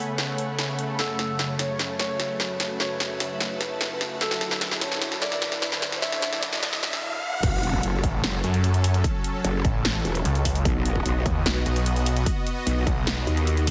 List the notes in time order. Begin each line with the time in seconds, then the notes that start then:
Already playing: C#3 A3 B3 A4 C#5 F#5 G#5 B5
0.18 snare, closed hi-hat
0.38 closed hi-hat
0.59 snare, closed hi-hat
0.79 closed hi-hat
0.99 F#2 F#4 A4, snare, closed hi-hat, riser
1.19 snare, closed hi-hat
1.29 B4 E5
1.39 snare, closed hi-hat
1.59 C#5, snare, open hi-hat
1.79 snare, closed hi-hat
1.99 C#5 A5, snare, closed hi-hat
2.20 snare, closed hi-hat
2.40 snare, closed hi-hat
2.60 snare, closed hi-hat
2.80 C#5, snare, closed hi-hat
3.00 snare, closed hi-hat
3.20 snare, open hi-hat
3.40 snare, closed hi-hat
3.61 snare, closed hi-hat
3.81 snare, closed hi-hat
4.01 snare, closed hi-hat
4.21 D3 E4 A4, snare, closed hi-hat
4.31 snare
4.41 snare, closed hi-hat
4.51 snare
4.61 snare, closed hi-hat
4.71 snare
4.81 C#5, snare, open hi-hat
4.92 snare
5.02 snare, closed hi-hat
5.12 snare
5.22 D5, snare, closed hi-hat
5.32 snare
5.42 snare, closed hi-hat
5.52 snare
5.62 snare, closed hi-hat
5.72 snare
5.82 snare, closed hi-hat
5.92 snare
6.02 E5, snare, closed hi-hat
6.12 snare
6.22 snare, closed hi-hat
6.33 snare
6.43 snare, open hi-hat
6.53 snare
6.63 snare, closed hi-hat
6.73 snare
6.83 snare, closed hi-hat
6.93 snare
7.03 high tom
7.13 high tom
7.33 mid tom
7.43 F#1 F#3 C#4 A4, kick, closed hi-hat, crash, impact
7.63 closed hi-hat
7.73 kick
7.83 F#1, closed hi-hat
8.04 A1, kick, closed hi-hat
8.24 F#1, snare, closed hi-hat
8.44 F#2, closed hi-hat
8.54 closed hi-hat
8.64 closed hi-hat
8.74 closed hi-hat
8.84 open hi-hat
8.94 closed hi-hat
9.04 kick, closed hi-hat
9.24 closed hi-hat
9.44 F#1, closed hi-hat
9.65 A1, kick, closed hi-hat
9.85 snare, closed hi-hat
10.05 E1, closed hi-hat
10.15 closed hi-hat
10.25 C#2, closed hi-hat
10.35 closed hi-hat
10.45 kick, open hi-hat
10.55 closed hi-hat
10.65 B1 B3 F#4 D#5, kick, closed hi-hat
10.86 closed hi-hat
10.96 kick
11.06 B1, closed hi-hat
11.26 D#2, kick, closed hi-hat
11.46 B1, snare, closed hi-hat
11.66 B1, closed hi-hat
11.76 closed hi-hat
11.86 closed hi-hat
11.96 closed hi-hat
12.06 open hi-hat
12.17 closed hi-hat
12.26 kick, closed hi-hat
12.47 closed hi-hat
12.66 B1, closed hi-hat
12.87 B1, kick, closed hi-hat
13.07 snare, closed hi-hat
13.27 D#2, closed hi-hat
13.37 closed hi-hat
13.47 closed hi-hat
13.57 closed hi-hat
13.67 kick, open hi-hat